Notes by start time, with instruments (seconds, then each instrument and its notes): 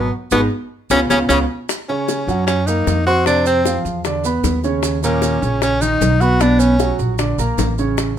Already playing: trombone B2, tenor saxophone B3
0.31 upright bass G#1, trombone B2, grand piano G#3 B3 D#4, tenor saxophone B3, high bongo, maracas
0.90 upright bass C#2, trombone C#3, grand piano B3 C#4 F4, tenor saxophone C#4, high bongo, maracas
1.10 upright bass C#2, trombone C#3, grand piano B3 C#4 F4, tenor saxophone C#4, high bongo, maracas
1.29 upright bass C#2, trombone C#3, grand piano B3 C#4 F4, tenor saxophone C#4, high bongo, maracas
1.69 high bongo, maracas
1.89 grand piano C#3 C#4 C#5, tenor saxophone C#4, high bongo
2.09 high bongo, maracas
2.27 upright bass F#2, grand piano F#3 F#4 F#5, maracas
2.47 tenor saxophone C#4, high bongo, maracas
2.67 grand piano A#3 A#4 A#5, tenor saxophone D#4, high bongo, maracas
2.87 upright bass F2, high bongo, low bongo, maracas
3.06 grand piano C4 C5 C6, tenor saxophone F#4, high bongo, maracas
3.26 grand piano C3 C4 C5, tenor saxophone D4, high bongo, maracas
3.46 tenor saxophone C4, high bongo, maracas
3.65 grand piano F3 F4 F5, high bongo, maracas
3.85 upright bass E2, maracas
4.05 grand piano D3 D4 D5, high bongo, maracas
4.24 grand piano B3 B4 B5, high bongo, maracas
4.44 upright bass D#2, high bongo, low bongo, maracas
4.64 grand piano C#3 C#4 C#5, high bongo, maracas
4.83 high bongo, maracas
5.03 grand piano A#2 A#3 A#4, tenor saxophone C#4, high bongo, maracas
5.22 high bongo, maracas
5.42 upright bass A#1, grand piano C#3 C#4 C#5, maracas
5.62 tenor saxophone C#4, high bongo, maracas
5.82 grand piano D#3 D#4 D#5, tenor saxophone D#4, high bongo, maracas
6.01 upright bass B1, high bongo, low bongo, maracas
6.20 grand piano B3 B4 B5, tenor saxophone F#4, high bongo, maracas
6.40 grand piano B2 B3 B4, tenor saxophone D4, high bongo, maracas
6.59 tenor saxophone C#4, high bongo, maracas
6.80 grand piano F#3 F#4 F#5, high bongo, maracas
6.99 upright bass A#1, maracas
7.19 grand piano D3 D4 D5, high bongo, maracas
7.38 upright bass A#1, grand piano A#3 A#4 A#5, high bongo, maracas
7.58 upright bass A1, high bongo, low bongo, maracas
7.78 grand piano C#3 C#4 C#5, high bongo, maracas
7.98 high bongo, maracas